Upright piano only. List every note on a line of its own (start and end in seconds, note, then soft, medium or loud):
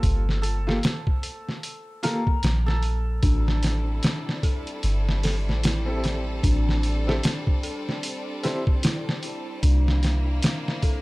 0.00 0.61 A#3 medium
0.00 0.62 F4 medium
0.00 0.62 G4 medium
0.00 0.63 A4 medium
0.67 0.80 A#3 medium
0.67 0.81 F4 medium
0.67 0.81 G4 medium
0.67 0.81 A4 loud
2.03 2.23 A#3 medium
2.03 2.23 F4 medium
2.03 2.23 G4 medium
2.03 2.23 A4 medium
5.86 7.01 C4 medium
5.86 7.02 E4 medium
5.86 7.02 G4 medium
5.86 7.03 A4 medium
7.07 7.20 C4 loud
7.07 7.21 E4 medium
7.07 7.21 G4 medium
7.07 7.21 A4 loud
8.44 8.63 C4 medium
8.44 8.63 E4 medium
8.44 8.64 G4 medium
8.44 8.64 C5 loud